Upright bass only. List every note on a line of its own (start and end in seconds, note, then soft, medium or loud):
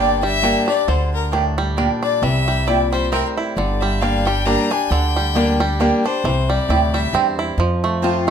0.00 0.53 G1 medium
0.88 1.87 D2 medium
2.22 3.21 C2 medium
3.57 4.56 G1 medium
4.91 5.90 D2 medium
6.24 6.57 C2 medium
6.69 7.07 D2 medium
7.13 7.52 E2 medium
7.58 8.30 F2 medium